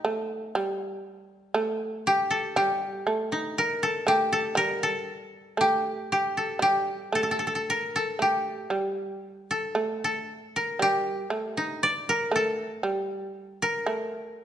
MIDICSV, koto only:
0, 0, Header, 1, 2, 480
1, 0, Start_track
1, 0, Tempo, 1008403
1, 259, Time_signature, 4, 2, 24, 8
1, 2660, Tempo, 1041667
1, 5060, Tempo, 1022147
1, 6773, End_track
2, 0, Start_track
2, 0, Title_t, "Koto"
2, 0, Program_c, 0, 107
2, 0, Note_on_c, 0, 63, 52
2, 0, Note_on_c, 0, 67, 51
2, 0, Note_on_c, 0, 69, 67
2, 221, Note_off_c, 0, 69, 0
2, 643, Note_off_c, 0, 67, 0
2, 905, Note_off_c, 0, 63, 0
2, 985, Note_on_c, 0, 67, 63
2, 1097, Note_on_c, 0, 69, 56
2, 1220, Note_off_c, 0, 67, 0
2, 1222, Note_on_c, 0, 67, 62
2, 1581, Note_on_c, 0, 63, 51
2, 1705, Note_on_c, 0, 70, 68
2, 1734, Note_off_c, 0, 69, 0
2, 1823, Note_on_c, 0, 69, 61
2, 1851, Note_off_c, 0, 70, 0
2, 1940, Note_off_c, 0, 67, 0
2, 1942, Note_on_c, 0, 67, 60
2, 2057, Note_off_c, 0, 69, 0
2, 2059, Note_on_c, 0, 69, 58
2, 2176, Note_on_c, 0, 70, 64
2, 2205, Note_off_c, 0, 69, 0
2, 2300, Note_on_c, 0, 69, 58
2, 2328, Note_off_c, 0, 70, 0
2, 2667, Note_off_c, 0, 67, 0
2, 2669, Note_on_c, 0, 67, 59
2, 2695, Note_off_c, 0, 63, 0
2, 2904, Note_off_c, 0, 67, 0
2, 2906, Note_on_c, 0, 67, 52
2, 3020, Note_off_c, 0, 69, 0
2, 3021, Note_on_c, 0, 69, 47
2, 3135, Note_off_c, 0, 67, 0
2, 3137, Note_on_c, 0, 67, 64
2, 3379, Note_off_c, 0, 69, 0
2, 3380, Note_on_c, 0, 69, 55
2, 3415, Note_off_c, 0, 69, 0
2, 3417, Note_on_c, 0, 69, 39
2, 3452, Note_off_c, 0, 69, 0
2, 3454, Note_on_c, 0, 69, 45
2, 3489, Note_off_c, 0, 69, 0
2, 3491, Note_on_c, 0, 69, 41
2, 3525, Note_off_c, 0, 69, 0
2, 3527, Note_on_c, 0, 69, 41
2, 3563, Note_off_c, 0, 69, 0
2, 3565, Note_on_c, 0, 69, 37
2, 3632, Note_on_c, 0, 70, 59
2, 3660, Note_off_c, 0, 69, 0
2, 3751, Note_on_c, 0, 69, 57
2, 3779, Note_off_c, 0, 70, 0
2, 3870, Note_off_c, 0, 67, 0
2, 3872, Note_on_c, 0, 67, 52
2, 4464, Note_off_c, 0, 69, 0
2, 4466, Note_on_c, 0, 69, 50
2, 4711, Note_off_c, 0, 69, 0
2, 4713, Note_on_c, 0, 69, 55
2, 4812, Note_off_c, 0, 67, 0
2, 4952, Note_on_c, 0, 70, 51
2, 4979, Note_off_c, 0, 69, 0
2, 5072, Note_on_c, 0, 67, 64
2, 5425, Note_on_c, 0, 63, 51
2, 5545, Note_on_c, 0, 74, 68
2, 5574, Note_off_c, 0, 63, 0
2, 5666, Note_off_c, 0, 70, 0
2, 5668, Note_on_c, 0, 70, 61
2, 5792, Note_on_c, 0, 69, 60
2, 5820, Note_off_c, 0, 70, 0
2, 6030, Note_off_c, 0, 67, 0
2, 6297, Note_off_c, 0, 74, 0
2, 6387, Note_on_c, 0, 70, 59
2, 6415, Note_off_c, 0, 69, 0
2, 6773, Note_off_c, 0, 70, 0
2, 6773, End_track
0, 0, End_of_file